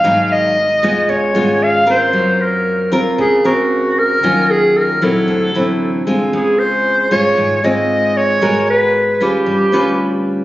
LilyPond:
<<
  \new Staff \with { instrumentName = "Clarinet" } { \time 4/4 \key des \major \tempo 4 = 115 f''8 ees''4. des''4 f''8 c''8~ | c''8 bes'4 r8 aes'8 ges'4 bes'8~ | bes'8 aes'8 bes'8 a'2 r8 | aes'8 c''4 des''4 ees''4 des''8~ |
des''8 ces''4 g'2 r8 | }
  \new Staff \with { instrumentName = "Nylon-string guitar" } { \time 4/4 \key des \major << { <ges ces' ees'>4 r8 <aes ces' f'>4 <aes ces' f'>4 <c' f' bes'>8~ | <c' f' bes'>4. <c' f' bes'>4 <c' bes'>4. | <ges des' f'>4. <ges c' e'>4 <fis c' e'>4 <aes c' f'>8~ | <aes c' f'>4. <aes f'>4 <aes c' f'>4. |
<ces' ges' bes'>4 r8 <des' f' ces''>4 <cis' f' b'>4. | } \\ { aes,2 des2 | ges2 des2 | ees2 d2 | des2 aes,2 |
aes2 g2 | } >> }
  \new Staff \with { instrumentName = "Upright bass" } { \clef bass \time 4/4 \key des \major aes,,4. ees,8 des,8 aes,,4. | ges,4. des,8 des,8 des,4. | ees,4. bes,,8 d,8 a,,4. | des,4. aes,,8 aes,,8 aes,,4. |
aes,,4. ees,8 g,,8 d,4. | }
>>